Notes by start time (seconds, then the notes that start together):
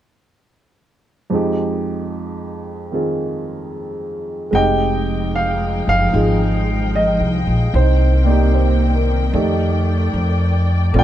1.30 F2 F3 G#3 D#4
1.35 G4
2.91 D#3 C4 F4 G#4
4.51 F1 F3 G#3 C4 D#4 D#5 G5
4.55 G4 G5
5.35 F5
5.87 F#1 F5
6.13 G#1 D#4 F4 G#4
6.95 D#5
7.20 C2
7.47 A#1
7.73 C2 D#3 A#3 C4 C5
7.77 D#4
8.25 A#3 D#4 D5
8.30 G4
8.54 C5
8.95 A#4
9.33 F2 A3 D#4 G4 D5
10.13 F2
10.94 A#1 F3 A3 C4 D4 F4 A4
10.98 D5 G5